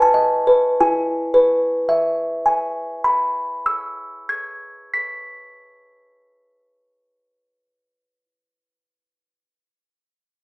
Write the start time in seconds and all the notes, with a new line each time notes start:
Already playing: E4 B4
0.02 A5
0.14 D#5
0.47 B4
0.80 E4 G#5
1.34 B4
1.89 E5
2.46 G#5
3.04 B5
3.66 E6
4.29 G#6
4.94 B6